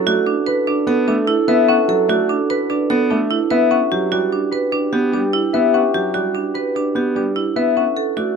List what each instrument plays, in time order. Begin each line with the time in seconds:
Already playing: grand piano F#3, marimba A4, french horn A4, harp B4 F#5
0.06 grand piano A3, marimba F#4, harp D5
0.27 marimba D4
0.47 marimba B4, harp B4
0.67 marimba D4, harp D5
0.87 grand piano B3, marimba A4
1.07 grand piano A3, marimba D4, harp A4
1.27 marimba E4
1.48 grand piano B3, marimba B4, harp E5
1.69 marimba C#4, harp F#5
1.88 grand piano F#3, marimba A4
2.09 grand piano A3, marimba F#4, harp D5
2.29 marimba D4
2.50 harp B4, marimba B4
2.70 marimba D4, harp D5
2.90 grand piano B3, marimba A4
3.10 grand piano A3, marimba D4, harp A4
3.31 marimba E4
3.51 grand piano B3, marimba B4, harp E5
3.71 marimba C#4, french horn G4, harp F#5
3.92 grand piano F#3, marimba G4
4.12 grand piano G3, marimba F#4, harp D5
4.32 marimba D4
4.51 harp B4, marimba B4
4.72 marimba D4, harp D5
4.93 grand piano B3, marimba G4
5.12 grand piano G3, marimba D4, harp G4
5.33 marimba E4
5.53 grand piano B3, marimba B4, harp E5
5.74 marimba C#4, harp F#5
5.94 grand piano F#3, marimba G4
6.14 grand piano G3, marimba F#4, harp D5
6.35 marimba D4
6.54 harp B4, marimba B4
6.75 marimba D4, harp D5
6.95 grand piano B3, marimba G4
7.15 grand piano G3, marimba D4, harp G4
7.36 marimba E4
7.56 grand piano B3, marimba B4, harp E5
7.76 marimba C#4, french horn A4, harp F#5
7.97 marimba A4
8.17 grand piano A3, marimba F#4, harp D5